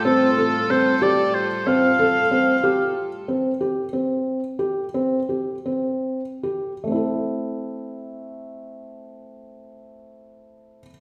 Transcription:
X:1
M:5/8
L:1/8
Q:1/4=86
K:Am
V:1 name="Oboe"
A2 c d c | f4 z | z4 z | z4 z |
z4 z | z4 z |]
V:2 name="Felt piano"
C A C G2 | C A C G2 | C G C2 G | C G C2 G |
[A,CEA]4- [A,CEA]- | [A,CEA]4- [A,CEA] |]
V:3 name="String section"
[A,,G,FA]4- [A,,G,FA]- | [A,,G,FA]4- [A,,G,FA] | z4 z | z4 z |
z4 z | z4 z |]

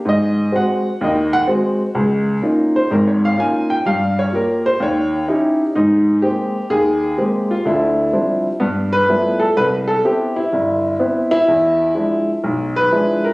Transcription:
X:1
M:4/4
L:1/8
Q:"Swing" 1/4=126
K:Ebmix
V:1 name="Upright piano"
e2 _g2 e g z2 | z3 c (3B d f a g | f d B c d2 z2 | [K:Cphr] E2 G2 A2 z F |
=E3 z =B, =B2 =A | =B =A G =E3 z E- | =E3 z2 =B2 _B |]
V:2 name="Upright piano"
A,,2 [A,C_G] z [E,,E,]2 [A,CG] z | D,,2 [B,DEF] z [A,,,A,,]2 [B,DEF] z | [G,,G,]2 [B,FG] z E,,2 [DE_FG] z | [K:Cphr] A,,2 [A,B,C] z E,,2 [A,B,CG] z |
[=D,,=D,]2 [F,G,C=D=E] z G,,2 [F,G,=A,=B,E] z | C,,2 [=B,C=E] z G,,,2 [B,CE] z | =E,,2 [F,^G,=D=E] z =B,,,2 [F,G,DE] z |]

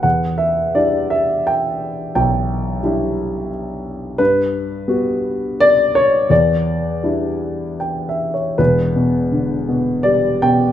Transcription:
X:1
M:3/4
L:1/8
Q:1/4=85
K:Em
V:1 name="Grand piano"
f e d e g2 | g4 z2 | B4 d ^c | d4 (3g e ^c |
B4 d g |]
V:2 name="Grand piano" clef=bass
E,,2 [G,DE]4 | B,,,2 [G,DE]4 | G,,2 [G,B,F]4 | E,,2 [G,DE]4 |
[E,,,E,,] B,, D, B,, G, B,, |]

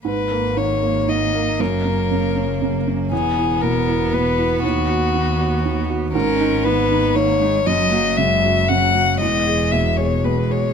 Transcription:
X:1
M:3/4
L:1/8
Q:1/4=118
K:G#m
V:1 name="Violin"
B2 c2 d2 | A4- A z | G2 A2 B2 | F4- F z |
A2 B2 c2 | d2 e2 f2 | d2 e c B c |]
V:2 name="Cello"
A,6- | A,6 | B,6- | B,6 |
C2 B,2 A, G, | F, A, G,2 F, A, | G,4 G,2 |]
V:3 name="Felt piano" clef=bass
G,, A, D, A, D, A, | F,, C C, C C, C | E,, E B,, E B,, E | D,, F D, F D, F |
G,, D D, D D, D | F,, F C, F C, F | E,, G B,, G B,, G |]
V:4 name="Double bass" clef=bass
G,,,6 | F,,,6 | E,,,6 | D,,6 |
G,,,6 | F,,,6 | E,,,6 |]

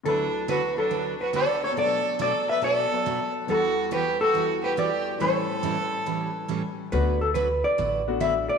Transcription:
X:1
M:4/4
L:1/8
Q:"Swing" 1/4=140
K:D
V:1 name="Hollow-body jazz guitar"
A2 B A2 B d c | d2 d e d3 z | A2 B A2 B d2 | c6 z2 |
B A B d3 e d |]
V:2 name="Fiddle"
D2 F D2 F A A | A2 A B A3 z | F2 G F2 G G2 | A6 z2 |
z8 |]
V:3 name="Steel-string acoustic guitar"
[D,F,B,FB] z [D,F,B,FB] z [D,F,B,FB] z [D,F,B,FB] z | [B,,F,A,DF] z [B,,F,A,DF] z [B,,F,A,DF] z [B,,F,A,DF] z | [E,G,B,F] z [E,G,B,F] z [E,G,B,F] z [E,G,B,F] z | [A,,E,G,CEA] z [A,,E,G,CEA] z [A,,E,G,CEA] z [A,,E,G,CEA] z |
[D,F,B,FB] z [D,F,B,FB] z [D,F,B,FB] z [D,F,B,FB] z |]
V:4 name="Upright piano"
[D,,D,F,EB]3 [F,A,Fc]4- [F,A,Fc] | [B,,F,A,DA]4- [B,,F,A,DA] [F,B,B]3 | [E,,E,G,Bf]4 [E,EG]4 | [A,,E,G,CB]8 |
[A,B,DF] z4 [A,B,DF]3 |]
V:5 name="Upright bass" clef=bass
z8 | z8 | z8 | z8 |
D,,4 A,,,4 |]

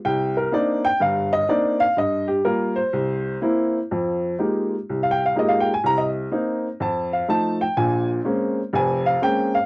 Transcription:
X:1
M:4/4
L:1/16
Q:"Swing" 1/4=124
K:Cm
V:1 name="Upright piano"
g2 B2 d2 g2 f2 e2 d2 f2 | e2 G2 B2 c6 z4 | [K:Fm] z8 z f g f e f g a | b e z6 =a2 f2 a2 g2 |
a2 z6 a2 f2 g2 f2 |]
V:2 name="Upright piano"
C,,4 [B,CDE]2 z2 [G,,,G,,]4 [B,CDE]2 z2 | G,,4 [G,B,F]2 z2 C,,4 [B,C=E]2 z2 | [K:Fm] [F,,F,]4 [A,B,EFG]2 z2 C,,4 [A,B,EFG]2 z2 | C,,4 [B,CE]2 z2 F,,4 [F,=A,E]2 z2 |
[B,,,B,,]4 [A,B,CD]2 z2 [F,,,F,,]4 [A,B,CD]2 z2 |]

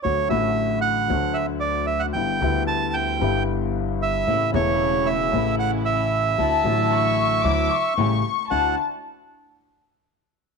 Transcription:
X:1
M:4/4
L:1/16
Q:1/4=114
K:D
V:1 name="Violin section"
z16 | z16 | z16 | a4 c'4 d'2 c'6 |
a2 z12 z2 |]
V:2 name="Bandoneon"
c2 e4 f4 e2 d2 e f | g4 a2 g4 z4 e2- | e2 c4 e4 f2 e4- | e12 z4 |
f2 z12 z2 |]
V:3 name="String section"
z16 | z16 | [A,CE]2 [A,CE]6 [A,CE]8 | [F,DE]2 [F,DE]6 [F,DE]2 z2 [A,CG]2 z2 |
[DEF]2 z12 z2 |]
V:4 name="Upright piano" clef=bass
[D,,D,F,A,F]2 [A,,,A,,D,F,A,F]6 [D,,D,F,A,F]8 | [G,,,G,,D,G,B,E]2 [D,,D,G,B,E]6 [G,,,G,,D,G,B,E]8 | [A,,,A,,C,E,A,E]2 [E,,,E,,C,E,A,E]6 [A,,,A,,C,E,A,E]8 | [D,,D,F,A,E]2 [A,,,A,,D,F,A,E]6 [D,,D,F,A,E]2 z2 [A,,,A,,C,G,A,E]2 z2 |
[D,,DEF]2 z12 z2 |]
V:5 name="Upright bass" clef=bass
D,,2 A,,,6 D,,8 | G,,,2 D,,6 G,,,8 | A,,,2 E,,,6 A,,,8 | D,,2 A,,,6 D,,2 z2 A,,,2 z2 |
D,,2 z12 z2 |]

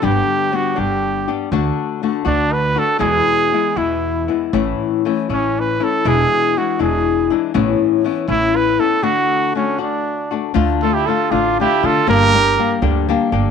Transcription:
X:1
M:6/8
L:1/16
Q:3/8=80
K:D
V:1 name="Trumpet"
G4 F2 G4 z2 | z6 D2 B2 A2 | ^G6 E4 z2 | z6 C2 B2 A2 |
^G4 F2 G4 z2 | z6 E2 B2 A2 | F4 C2 D4 z2 | [K:Dm] z2 A G A2 F2 G2 A2 |
B6 z6 |]
V:2 name="Trumpet"
z12 | z12 | z12 | z12 |
z12 | z12 | z12 | [K:Dm] z2 F E F2 D2 E2 F2 |
G6 z6 |]
V:3 name="Nylon-string guitar"
[G,,D,G,B,DG]4 [G,B,DG]2 [G,,D,G,B,DG]4 [G,B,DG]2 | [D,A,DF]4 [D,A,DF]2 [D,A,DF]4 [A,DF]2 | [E,,B,,E,^G,B,E]4 [E,G,B,E]2 [E,,B,,E,G,B,E]4 [E,G,B,E]2 | [A,,E,A,CE]4 [E,A,CE]2 [A,,E,A,CE]4 [A,CE]2 |
[E,,B,,E,^G,DE]4 [E,G,DE]2 [E,,B,,E,G,DE]4 [E,G,DE]2 | [A,,E,B,CE]4 [E,B,CE]2 [A,,E,B,CE]4 [B,CE]2 | [D,A,DF]4 [D,A,DF]2 [D,A,DF]4 [A,DF]2 | [K:Dm] [D,A,DF]2 [A,DF]2 [D,A,DF]2 [D,A,DF]2 [D,A,DF]2 [A,DF]2 |
[G,,D,G,B,DG]2 [G,B,DG]2 [G,B,DG]2 [G,,D,G,B,DG]2 [G,B,DG]2 [G,B,DG]2 |]
V:4 name="Upright bass" clef=bass
G,,,2 z4 G,,,6 | D,,2 z4 D,,6 | E,,2 z4 E,,6 | A,,,2 z4 A,,,6 |
E,,,2 z4 E,,,6 | A,,,2 z4 A,,,6 | z12 | [K:Dm] D,,6 A,,,4 D,2 |
G,,,6 D,,4 G,,,2 |]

